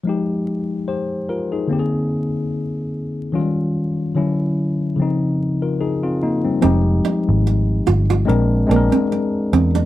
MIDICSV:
0, 0, Header, 1, 5, 480
1, 0, Start_track
1, 0, Key_signature, -4, "minor"
1, 0, Tempo, 821918
1, 25, Time_signature, 4, 2, 24, 8
1, 5755, End_track
2, 0, Start_track
2, 0, Title_t, "Tine electric piano"
2, 0, Program_c, 0, 4
2, 20, Note_on_c, 0, 53, 51
2, 30, Note_on_c, 0, 56, 50
2, 42, Note_on_c, 0, 63, 50
2, 53, Note_on_c, 0, 67, 57
2, 121, Control_c, 0, 64, 127
2, 504, Note_off_c, 0, 63, 0
2, 510, Note_off_c, 0, 67, 0
2, 513, Note_on_c, 0, 72, 49
2, 517, Note_on_c, 0, 67, 42
2, 737, Note_off_c, 0, 72, 0
2, 739, Note_off_c, 0, 67, 0
2, 754, Note_on_c, 0, 70, 54
2, 759, Note_on_c, 0, 65, 47
2, 875, Note_off_c, 0, 70, 0
2, 877, Note_off_c, 0, 65, 0
2, 887, Note_on_c, 0, 68, 54
2, 891, Note_on_c, 0, 63, 43
2, 963, Note_off_c, 0, 53, 0
2, 969, Note_off_c, 0, 56, 0
2, 978, Note_on_c, 0, 50, 54
2, 989, Note_on_c, 0, 58, 53
2, 994, Control_c, 0, 64, 0
2, 997, Note_on_c, 0, 60, 56
2, 1009, Note_on_c, 0, 67, 51
2, 1039, Note_off_c, 0, 67, 0
2, 1041, Note_off_c, 0, 68, 0
2, 1048, Note_on_c, 0, 68, 58
2, 1094, Control_c, 0, 64, 127
2, 1112, Note_off_c, 0, 63, 0
2, 1922, Note_off_c, 0, 50, 0
2, 1928, Note_off_c, 0, 58, 0
2, 1932, Note_off_c, 0, 60, 0
2, 1941, Note_on_c, 0, 51, 54
2, 1946, Note_on_c, 0, 54, 43
2, 1949, Note_on_c, 0, 61, 56
2, 1954, Control_c, 0, 64, 0
2, 1958, Note_off_c, 0, 68, 0
2, 1958, Note_on_c, 0, 65, 64
2, 1983, Note_on_c, 0, 55, 54
2, 1987, Note_off_c, 0, 54, 0
2, 2036, Control_c, 0, 64, 127
2, 2421, Note_on_c, 0, 50, 59
2, 2423, Note_off_c, 0, 51, 0
2, 2425, Note_off_c, 0, 61, 0
2, 2427, Note_on_c, 0, 54, 54
2, 2432, Note_off_c, 0, 65, 0
2, 2432, Note_on_c, 0, 61, 55
2, 2433, Control_c, 0, 64, 0
2, 2439, Note_on_c, 0, 64, 67
2, 2444, Note_off_c, 0, 55, 0
2, 2536, Control_c, 0, 64, 127
2, 2897, Note_on_c, 0, 49, 61
2, 2903, Note_off_c, 0, 50, 0
2, 2906, Note_off_c, 0, 54, 0
2, 2908, Note_on_c, 0, 53, 57
2, 2909, Note_off_c, 0, 61, 0
2, 2912, Note_off_c, 0, 64, 0
2, 2912, Control_c, 0, 64, 0
2, 2918, Note_on_c, 0, 60, 56
2, 2931, Note_on_c, 0, 63, 65
2, 3020, Control_c, 0, 64, 127
2, 3147, Note_off_c, 0, 60, 0
2, 3153, Note_off_c, 0, 63, 0
2, 3283, Note_on_c, 0, 70, 53
2, 3286, Note_on_c, 0, 65, 41
2, 3383, Note_off_c, 0, 70, 0
2, 3384, Note_off_c, 0, 65, 0
2, 3390, Note_on_c, 0, 68, 57
2, 3391, Note_on_c, 0, 63, 47
2, 3512, Note_off_c, 0, 68, 0
2, 3513, Note_off_c, 0, 63, 0
2, 3523, Note_on_c, 0, 65, 61
2, 3526, Note_on_c, 0, 60, 45
2, 3623, Note_off_c, 0, 65, 0
2, 3625, Note_off_c, 0, 60, 0
2, 3637, Note_on_c, 0, 63, 58
2, 3640, Note_on_c, 0, 58, 48
2, 3756, Note_off_c, 0, 63, 0
2, 3758, Note_off_c, 0, 58, 0
2, 3765, Note_on_c, 0, 60, 54
2, 3768, Note_on_c, 0, 55, 43
2, 3841, Note_off_c, 0, 49, 0
2, 3847, Note_off_c, 0, 53, 0
2, 3863, Note_on_c, 0, 53, 69
2, 3868, Note_on_c, 0, 56, 61
2, 3872, Control_c, 0, 64, 0
2, 3875, Note_on_c, 0, 63, 63
2, 3879, Note_on_c, 0, 67, 73
2, 3967, Control_c, 0, 64, 127
2, 3989, Note_off_c, 0, 60, 0
2, 3991, Note_off_c, 0, 55, 0
2, 4776, Note_off_c, 0, 53, 0
2, 4778, Note_off_c, 0, 56, 0
2, 4782, Note_off_c, 0, 63, 0
2, 4784, Note_off_c, 0, 67, 0
2, 4819, Note_on_c, 0, 56, 73
2, 4828, Note_on_c, 0, 60, 68
2, 4831, Note_on_c, 0, 62, 66
2, 4832, Control_c, 0, 64, 0
2, 4837, Note_on_c, 0, 70, 82
2, 4940, Control_c, 0, 64, 127
2, 5050, Note_off_c, 0, 56, 0
2, 5054, Note_off_c, 0, 60, 0
2, 5056, Note_off_c, 0, 62, 0
2, 5059, Note_off_c, 0, 70, 0
2, 5063, Note_on_c, 0, 56, 68
2, 5067, Note_on_c, 0, 60, 63
2, 5074, Note_on_c, 0, 62, 62
2, 5080, Note_on_c, 0, 68, 60
2, 5114, Note_off_c, 0, 68, 0
2, 5116, Note_on_c, 0, 70, 80
2, 5748, Note_off_c, 0, 56, 0
2, 5750, Note_off_c, 0, 60, 0
2, 5753, Note_off_c, 0, 62, 0
2, 5755, Note_off_c, 0, 70, 0
2, 5755, End_track
3, 0, Start_track
3, 0, Title_t, "Nylon-string guitar"
3, 0, Program_c, 1, 24
3, 3867, Note_on_c, 1, 60, 67
3, 3973, Note_off_c, 1, 60, 0
3, 4116, Note_on_c, 1, 63, 64
3, 4218, Note_off_c, 1, 63, 0
3, 4595, Note_on_c, 1, 65, 75
3, 4697, Note_off_c, 1, 65, 0
3, 4730, Note_on_c, 1, 65, 65
3, 4813, Note_off_c, 1, 65, 0
3, 5087, Note_on_c, 1, 58, 60
3, 5184, Note_off_c, 1, 58, 0
3, 5210, Note_on_c, 1, 60, 63
3, 5293, Note_off_c, 1, 60, 0
3, 5566, Note_on_c, 1, 60, 71
3, 5664, Note_off_c, 1, 60, 0
3, 5694, Note_on_c, 1, 62, 70
3, 5755, Note_off_c, 1, 62, 0
3, 5755, End_track
4, 0, Start_track
4, 0, Title_t, "Picked electric bass"
4, 0, Program_c, 2, 34
4, 3880, Note_on_c, 2, 29, 88
4, 4085, Note_off_c, 2, 29, 0
4, 4256, Note_on_c, 2, 32, 76
4, 4555, Note_off_c, 2, 32, 0
4, 4603, Note_on_c, 2, 31, 82
4, 4807, Note_off_c, 2, 31, 0
4, 4840, Note_on_c, 2, 34, 84
4, 5045, Note_off_c, 2, 34, 0
4, 5079, Note_on_c, 2, 34, 68
4, 5188, Note_off_c, 2, 34, 0
4, 5566, Note_on_c, 2, 40, 77
4, 5755, Note_off_c, 2, 40, 0
4, 5755, End_track
5, 0, Start_track
5, 0, Title_t, "Muted nylon-string guitar strokes"
5, 4361, Note_on_c, 9, 29, 37
5, 4419, Note_off_c, 9, 29, 0
5, 4844, Note_on_c, 9, 29, 38
5, 4902, Note_off_c, 9, 29, 0
5, 5326, Note_on_c, 9, 29, 38
5, 5384, Note_off_c, 9, 29, 0
5, 5755, End_track
0, 0, End_of_file